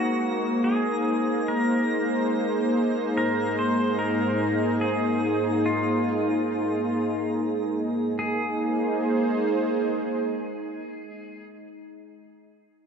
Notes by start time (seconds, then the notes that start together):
Already playing: G#3 A#3 D#4 F#4 G#4 C5 A#5
0.64 G#4
1.48 A#4
3.15 G#2 A#4
3.59 C5
3.99 A#4
4.81 G#4
5.66 F4
8.19 G#3 A#3 D#4 G#4
8.32 D#4
8.45 G#4
8.58 C5